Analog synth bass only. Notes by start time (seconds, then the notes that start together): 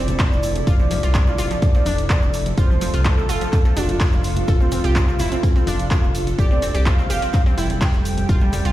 Already playing: F1
0.32 F1
0.67 F1
1.03 C2
1.39 F1
1.86 F1
2.22 F1
2.58 F1
2.94 C2
3.29 F1
3.77 F1
4.13 F1
4.48 F1
4.84 C2
5.20 F1
5.67 F1
6.03 F1
6.39 F1
6.75 C2
7.10 F1
7.58 F1
7.94 F1
8.29 F1
8.65 C2